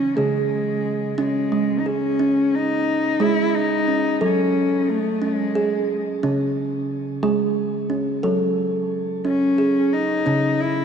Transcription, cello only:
Already playing: C#4
0.17 G#3
1.19 G#3
1.79 D#4
1.87 C#4
2.55 D#4
3.22 E4
3.55 D#4
4.24 C#4
4.90 A3
5.23 G#3
9.26 C#4
9.93 D#4
10.60 E4

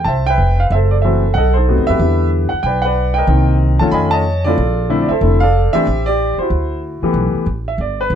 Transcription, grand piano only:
0.04 E5 A5
0.09 C5
0.26 B4 E5 G5
0.60 F5
0.72 A4 C5 E5
0.91 D5
1.02 E3 A3 C4 F#4 A4 C5 E5
1.34 D#5 F#5
1.38 A4
1.54 D#4 A4 C5
1.68 C3 A3 B3 F#4
1.87 G4 B4 E5
2.00 D3 G3 B3 E4
2.49 F#5
2.63 B4 D5 G5
2.82 B4 F#5
2.86 D5
3.14 D#5 G5
3.19 A#4
3.28 D#3 A#3 C4 D#4
3.79 D#3 A3 C#4 F4 A5
3.91 D#5 G#5 B5
4.11 C#5 D#5 A5
4.44 D3 A3 C4 E4 F4 A4 D5
4.89 D3 A3 C4 E4
5.02 D5
5.09 A4 C5 E5
5.22 D3 A3 C4 E4
5.40 A4 D5 F5
5.73 E3 A3 C4 D4 G4 C5 E5
6.06 G4 D5
6.39 E4 F#4 C5
7.03 E3 A3 B3 G4
7.68 E5
7.81 D5
8.01 B4

